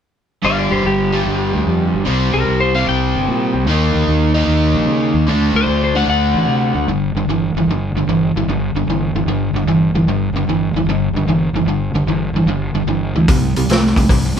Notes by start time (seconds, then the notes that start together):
0.43 G1 G2 D3 G3 D5 F5
0.58 F4 D5
0.71 G1 G4 C5
0.85 G1 G4
1.12 G2 D3 G3
1.27 G1
1.54 D2
1.66 F2
1.94 G1
2.05 C2 C3 G3 C4
2.34 C2 A#4
2.47 C2
2.60 C5
2.74 C3 G3 C4 F5
2.88 C2 G5
3.15 G1
3.28 A#2
3.54 C2
3.67 D#2 D#3 A#3 D#4
3.95 D#2
4.08 D#2
4.34 D#3 A#3 D#4
4.47 D#2
4.74 A#1
4.86 C#3
5.14 D#2
5.27 D2 D3 A3 D4
5.54 D2 C5
5.67 D2
5.84 C5
5.95 D3 A3 D4 F#5
6.07 D2 F#5
6.34 A1
6.46 C3
6.74 D2
6.88 G1 G2 D3
7.15 G1 G2 D3
7.28 G1 G2 E3
7.54 G1 G2 E3
7.67 G1 G2 D3
7.95 G1 G2 D3
8.07 G1 G2 E3
8.35 G1 G2 E3
8.48 G1 G2 D3
8.75 G1 G2 D3
8.87 G1 G2 E3
9.15 G1 G2 E3
9.26 G1 G2 D3
9.53 G1 G2 D3
9.67 G1 G2 E3
9.94 G1 G2 E3
10.07 G1 G2 D3
10.33 G1 G2
10.37 D3
10.47 G1 G2 E3
10.73 G1 G2 E3
10.86 G1 G2 D3
11.13 G1 G2 D3
11.27 G1 G2 E3
11.53 G1 G2 E3
11.65 G1 G2 D3
11.94 G1 G2 D3
12.07 G1 G2 E3
12.33 G1 G2 E3
12.46 G1 G2 D3
12.74 G1 G2 D3
12.87 G1 G2 E3
13.14 D2 G2 E3
13.28 C2 C3 G3, kick, open hi-hat
13.56 C2 C3 G3, open hi-hat
13.69 C2 C3 A3, snare, open hi-hat
13.86 snare
13.96 C2 C3 A3, kick, open hi-hat
14.09 C2 C3 G3, kick, open hi-hat
14.36 C2 C3